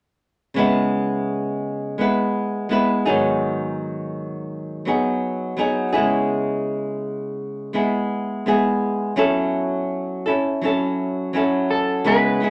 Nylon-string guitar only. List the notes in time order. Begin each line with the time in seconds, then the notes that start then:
0.54 C#3 G#3 B3 E4
0.59 B4
1.98 G#3 B3 E4 B4
2.69 G#3 B3 E4 B4
3.05 D#3 F#3 B3 D#4 G#4
3.10 G#2
4.85 F#3 B3 D#4 G#4
5.57 F#3 B3 D#4 G#4
5.93 G#3 B3 E4 G#4
5.97 C#3
7.73 G#3 B3 E4 G#4
8.46 G#3 B3 E4 G#4
9.16 F#3 C#4 E4 A4
10.26 C#4 E4 A4
10.61 F#3 C#4 E4 A4
11.33 F#3 C#4 E4 A4
12.04 C#3 G#3 B3 E4 G#4
12.40 G#3 B3 E4 G#4